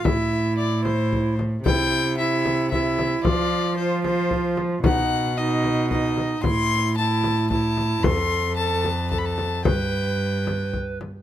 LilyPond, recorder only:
\new Staff \with { instrumentName = "Recorder" } { \time 3/4 \key f \lydian \tempo 4 = 112 e'2. | e'4 e'4 e'4 | f'4 f'2 | dis'4 dis'4 dis'4 |
e'4 e'4 e'4 | a'4 a'4 a'4 | b'2~ b'8 r8 | }